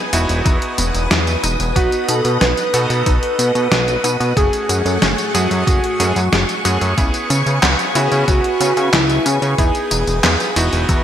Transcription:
Already playing: soft synth lead G#4, string machine B4 G#5 D#6
0.13 analog synth bass E1, electric grand piano B3 D#4 E4 F#4, synth arpeggio sound E4, closed hi-hat, tambourine
0.29 analog synth bass E1, closed hi-hat, tambourine
0.45 analog synth bass E2, synth arpeggio sound D#4, kick, closed hi-hat, tambourine
0.62 closed hi-hat
0.78 analog synth bass E1, synth arpeggio sound B3, closed hi-hat, tambourine
0.94 analog synth bass E1, closed hi-hat, tambourine
1.10 analog synth bass E2, synth arpeggio sound E4, snare, closed hi-hat, tambourine
1.27 closed hi-hat, tambourine
1.43 analog synth bass E1, synth arpeggio sound D#4, closed hi-hat, tambourine
1.60 analog synth bass E1, closed hi-hat, tambourine
1.76 analog synth bass B1, electric grand piano B3 D#4 F#4 B4, soft synth lead F#4, synth arpeggio sound F#4, fm electric piano F#4, string machine D#5 F#5, kick, closed hi-hat, tambourine
1.92 closed hi-hat, tambourine
2.08 analog synth bass B2, synth arpeggio sound D#4, soft synth lead A4, fm electric piano A4, closed hi-hat, tambourine
2.25 analog synth bass B2, closed hi-hat, tambourine
2.41 analog synth bass B1, synth arpeggio sound B3, soft synth lead B4, fm electric piano B4, snare, closed hi-hat, tambourine
2.57 closed hi-hat, tambourine
2.74 analog synth bass B2, electric grand piano B3 D#4 F#4 A4, synth arpeggio sound F#4, closed hi-hat, tambourine
2.90 analog synth bass B2, closed hi-hat, tambourine
3.06 analog synth bass B1, synth arpeggio sound D#4, fm electric piano B4, soft synth lead B4, kick, closed hi-hat, tambourine
3.23 closed hi-hat
3.39 analog synth bass B2, synth arpeggio sound B3, closed hi-hat, tambourine
3.55 analog synth bass B2, closed hi-hat, tambourine
3.71 analog synth bass B1, synth arpeggio sound F#4, snare, closed hi-hat, tambourine
3.88 closed hi-hat, tambourine
4.04 analog synth bass B2, synth arpeggio sound D#4, closed hi-hat, tambourine
4.20 analog synth bass B2, closed hi-hat, tambourine
4.37 analog synth bass F#1, electric grand piano A3 C#4 F#4 G#4, string machine A3 G#5 C#6, synth arpeggio sound G#4, fm electric piano G#4, soft synth lead G#4, kick, closed hi-hat, tambourine
4.53 closed hi-hat, tambourine
4.69 analog synth bass F#2, synth arpeggio sound F#4, closed hi-hat, tambourine
4.85 analog synth bass F#2, fm electric piano A4, soft synth lead A4, closed hi-hat, tambourine
5.02 analog synth bass F#1, synth arpeggio sound C#4, soft synth lead G#4, fm electric piano G#4, snare, closed hi-hat, tambourine
5.18 closed hi-hat, tambourine
5.34 analog synth bass F#2, electric grand piano A3 C#4 F#4 G#4, soft synth lead F#4, fm electric piano F#4, synth arpeggio sound G#4, closed hi-hat, tambourine
5.51 analog synth bass F#2, closed hi-hat, tambourine
5.67 analog synth bass F#1, synth arpeggio sound F#4, kick, closed hi-hat, tambourine
5.84 closed hi-hat
6.00 analog synth bass F#2, electric grand piano A3 C#4 F#4 G#4, synth arpeggio sound C#4, closed hi-hat, tambourine
6.16 analog synth bass F#2, closed hi-hat, tambourine
6.32 analog synth bass F#1, synth arpeggio sound G#4, snare, closed hi-hat, tambourine
6.49 closed hi-hat, tambourine
6.65 analog synth bass F#2, electric grand piano A3 C#4 F#4 G#4, synth arpeggio sound F#4, closed hi-hat, tambourine
6.81 analog synth bass F#2, closed hi-hat, tambourine
6.98 analog synth bass C#2, electric grand piano B3 C#4 E4 G#4, synth arpeggio sound E4, string machine B4, kick, closed hi-hat, tambourine
7.14 closed hi-hat, tambourine
7.30 analog synth bass C#3, synth arpeggio sound C#4, closed hi-hat, tambourine
7.46 analog synth bass C#3, closed hi-hat, tambourine
7.63 analog synth bass C#2, synth arpeggio sound B3, snare, clap, closed hi-hat, tambourine
7.79 closed hi-hat, tambourine
7.95 analog synth bass C#3, electric grand piano B3 C#4 E4 F#4, synth arpeggio sound E4, soft synth lead G#4, fm electric piano G#4, closed hi-hat, tambourine
8.12 analog synth bass C#3, closed hi-hat, tambourine
8.28 analog synth bass C#2, synth arpeggio sound C#4, soft synth lead F#4, fm electric piano F#4, kick, closed hi-hat, tambourine
8.44 closed hi-hat
8.61 analog synth bass C#3, synth arpeggio sound B3, closed hi-hat, tambourine
8.77 analog synth bass C#3, closed hi-hat, tambourine
8.93 analog synth bass C#2, synth arpeggio sound E4, fm electric piano E4, soft synth lead E4, snare, clap, closed hi-hat, tambourine
9.10 closed hi-hat, tambourine
9.26 analog synth bass C#3, synth arpeggio sound C#4, soft synth lead G#4, fm electric piano G#4, closed hi-hat, tambourine
9.42 analog synth bass C#3, closed hi-hat, tambourine
9.58 analog synth bass E2, electric grand piano B3 D#4 E4 G#4, synth arpeggio sound E4, string machine B4 D#6, kick, closed hi-hat, tambourine
9.75 closed hi-hat, tambourine
9.91 analog synth bass E1, synth arpeggio sound D#4, closed hi-hat, tambourine
10.07 analog synth bass E1, closed hi-hat, tambourine
10.24 analog synth bass E2, synth arpeggio sound B3, snare, clap, closed hi-hat, tambourine
10.40 closed hi-hat, tambourine
10.56 analog synth bass E1, electric grand piano B3 D#4 E4 F#4, synth arpeggio sound E4, closed hi-hat, tambourine
10.73 analog synth bass E1, closed hi-hat, tambourine
10.89 analog synth bass E2, synth arpeggio sound D#4, kick, closed hi-hat, tambourine

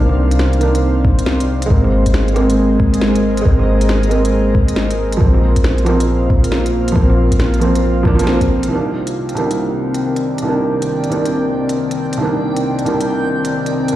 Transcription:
Already playing: 808-style bass C2, analog synth pad C3 C4 C5 D5 F5, felt piano D#3 A#3
0.00 felt piano D4
0.09 cross-stick
0.31 closed hi-hat
0.39 snare
0.53 closed hi-hat
0.59 felt piano D#3 A#3, closed hi-hat
0.63 felt piano D4
0.75 closed hi-hat
1.05 kick
1.19 closed hi-hat
1.26 snare
1.40 closed hi-hat
1.62 felt piano G#3, closed hi-hat
1.70 808-style bass G#1, analog synth pad G#3, felt piano A#3 C4, kick
1.84 analog synth pad G#4, cross-stick
2.06 kick, closed hi-hat
2.14 snare
2.28 analog synth pad D#5, closed hi-hat
2.34 felt piano G#3 A#3, cross-stick, closed hi-hat
2.38 felt piano C4
2.50 closed hi-hat
2.55 analog synth pad A#4
2.80 kick
2.94 closed hi-hat
3.01 snare
3.15 closed hi-hat
3.37 closed hi-hat
3.41 felt piano G#3 A#3, kick
3.45 808-style bass G#1, felt piano C4
3.59 cross-stick
3.81 closed hi-hat
3.89 snare
4.03 closed hi-hat
4.09 felt piano G#3 A#3, closed hi-hat
4.13 felt piano C4
4.25 closed hi-hat
4.55 kick
4.68 closed hi-hat
4.76 snare
4.91 closed hi-hat
5.12 closed hi-hat
5.17 808-style bass A#1, analog synth pad A#2, felt piano F3 A#3, kick
5.25 felt piano C4
5.34 cross-stick
5.53 analog synth pad F5, kick, closed hi-hat
5.64 snare
5.72 analog synth pad A#3
5.78 closed hi-hat
5.84 felt piano F3 A#3 C4, cross-stick, closed hi-hat
6.00 closed hi-hat
6.13 analog synth pad F4
6.30 kick
6.44 closed hi-hat
6.52 snare
6.66 closed hi-hat
6.88 felt piano F3, closed hi-hat
6.96 808-style bass A#1, felt piano A#3, kick
7.00 felt piano C4
7.10 cross-stick
7.32 kick, closed hi-hat
7.40 snare
7.54 closed hi-hat
7.59 felt piano F3 A#3 C4, closed hi-hat
7.75 closed hi-hat
8.03 felt piano F3 A#3 D4, kick
8.15 felt piano F3 A#3, closed hi-hat
8.23 felt piano C4, snare
8.41 kick, closed hi-hat
8.63 closed hi-hat
8.68 felt piano C2 D#3, analog synth pad C3, synth texture G5
8.73 felt piano A#3 D4
9.07 closed hi-hat
9.11 analog synth pad C4
9.29 closed hi-hat
9.35 felt piano C2 D#3 A#3, closed hi-hat
9.39 felt piano D4
9.50 analog synth pad D#3, closed hi-hat
9.57 analog synth pad A#4
9.94 analog synth pad D5, closed hi-hat
10.16 closed hi-hat
10.38 felt piano C2, closed hi-hat
10.45 felt piano D#3 A#3
10.50 felt piano D4
10.82 closed hi-hat
11.04 closed hi-hat
11.10 felt piano C2 D#3 A#3, closed hi-hat
11.14 felt piano D4
11.26 closed hi-hat
11.69 closed hi-hat
11.91 closed hi-hat
12.13 closed hi-hat
12.17 felt piano C2 D#3
12.22 felt piano A#3 D4
12.57 closed hi-hat
12.79 closed hi-hat
12.85 felt piano C2 D#3 A#3 D4, closed hi-hat
13.01 closed hi-hat
13.45 closed hi-hat
13.66 closed hi-hat
13.88 closed hi-hat
13.92 felt piano C2

